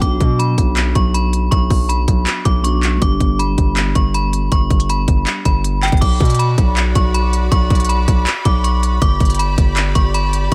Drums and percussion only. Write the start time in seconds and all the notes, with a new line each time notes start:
0.02 kick, closed hi-hat
0.20 kick, closed hi-hat
0.40 closed hi-hat
0.58 kick, closed hi-hat
0.77 clap, closed hi-hat
0.95 kick, closed hi-hat
1.14 closed hi-hat
1.33 closed hi-hat
1.52 kick, closed hi-hat
1.70 kick, open hi-hat
1.89 closed hi-hat
2.08 kick, closed hi-hat
2.27 clap, closed hi-hat
2.45 kick, closed hi-hat
2.64 closed hi-hat
2.83 clap, closed hi-hat
3.02 kick, closed hi-hat
3.20 kick, closed hi-hat
3.39 closed hi-hat
3.58 kick, closed hi-hat
3.77 clap, closed hi-hat
3.95 kick, closed hi-hat
4.14 closed hi-hat
4.33 closed hi-hat
4.52 kick, closed hi-hat
4.70 kick, closed hi-hat
4.80 closed hi-hat
4.89 closed hi-hat
5.08 kick, closed hi-hat
5.27 clap, closed hi-hat
5.45 kick, closed hi-hat
5.64 closed hi-hat
5.83 clap, closed hi-hat
5.88 closed hi-hat
5.92 kick, closed hi-hat
5.97 closed hi-hat
6.02 kick, closed hi-hat, crash
6.20 kick, closed hi-hat
6.25 closed hi-hat
6.30 closed hi-hat
6.35 closed hi-hat
6.39 closed hi-hat
6.58 kick, closed hi-hat
6.77 clap, closed hi-hat
6.95 kick, closed hi-hat
7.14 closed hi-hat
7.33 closed hi-hat
7.52 kick, closed hi-hat
7.70 kick, closed hi-hat, open hi-hat
7.75 closed hi-hat
7.80 closed hi-hat
7.85 closed hi-hat
7.89 closed hi-hat
8.08 kick, closed hi-hat
8.27 clap, closed hi-hat
8.45 kick, closed hi-hat
8.64 closed hi-hat
8.83 closed hi-hat
9.02 kick, closed hi-hat
9.20 kick, closed hi-hat
9.25 closed hi-hat
9.30 closed hi-hat
9.34 closed hi-hat
9.39 closed hi-hat
9.58 kick, closed hi-hat
9.77 clap, closed hi-hat
9.95 kick, closed hi-hat
10.14 closed hi-hat
10.33 closed hi-hat